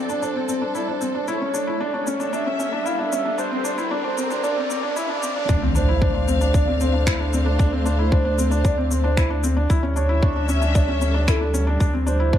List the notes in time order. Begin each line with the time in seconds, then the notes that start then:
Already playing: F3 C4 A4 D5, riser
0.09 D4, shaker
0.22 D4 C5, shaker
0.36 C4
0.49 C4, shaker
0.62 D4
0.75 E4 D5, shaker
0.88 D4 C5
1.01 C4, shaker
1.14 D4
1.28 D3 E4 C#5, shaker
1.41 C#4
1.54 D4, shaker
1.67 E4
1.74 C#4
1.78 G3 D4 D5
1.93 D4 C#5
2.07 C#4, shaker
2.15 E5
2.20 D4, shaker
2.33 D4 E5, shaker
2.46 C#4
2.59 C#4, shaker
2.72 D4
2.86 E4 F5, shaker
2.99 D4 E5
3.12 C#4, shaker
3.25 D4
3.38 D4 C5, shaker
3.51 C4
3.64 D4, shaker
3.75 E4 A#4, shaker
3.90 D4 D5
4.03 D4 C5
4.17 C4, shaker
4.28 D4, shaker
4.33 F5
4.43 D4 D5, shaker
4.57 C4
4.70 C4, shaker
4.83 D4
4.96 E4 E5, shaker
5.09 D4 D5
5.23 C4, shaker
5.36 D4
5.49 D2 A3 D4, kick, impact, shaker
5.62 C4
5.75 D4 C5, shaker
5.89 E4
6.01 D4, kick
6.14 D4
6.28 C4, shaker
6.41 D4, shaker
6.53 D4 C5 D5, kick, shaker
6.68 C4
6.80 C4 C5, shaker
6.94 D4
7.07 E4, finger snap, kick, shaker
7.20 D4
7.33 C4, shaker
7.46 D4
7.59 D4, kick, shaker
7.72 C4
7.86 D4 C5, shaker
7.99 E4
8.12 D4, kick
8.25 D4
8.38 C4, shaker
8.51 D4, shaker
8.65 D4 D5, kick, shaker
8.78 C4
8.91 C4 C5, shaker
9.04 D4
9.17 E4, finger snap, kick, shaker
9.30 D4
9.43 C4, shaker
9.57 D4
9.70 D2 G3 E4, kick, shaker
9.83 C#4
9.96 D4 C#5, shaker
10.04 C#4 E5
10.09 E4
10.22 D4, kick
10.36 D4
10.48 C#4 E5, shaker
10.62 D4 A4, shaker
10.75 D4 C#5, kick, shaker
10.88 C#4
11.01 C#4, shaker
11.14 D4
11.27 E4 A4, finger snap, kick, shaker
11.41 D4
11.54 C#4, shaker
11.67 D4
11.80 D2 D4, kick, shaker
11.93 C4
12.07 D4 C5, shaker
12.20 D4 E4
12.33 D4, kick